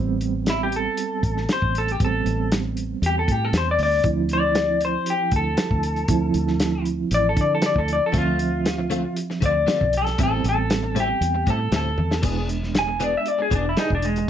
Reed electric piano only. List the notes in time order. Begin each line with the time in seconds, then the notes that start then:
Already playing: G3 B3 C4
2.01 G3 B3 C4
4.04 F3 C4 E4
6.09 F3 C4 E4
8.13 F3 C4 E5
10.19 G3 B3 C4
12.22 G#3 B3 D4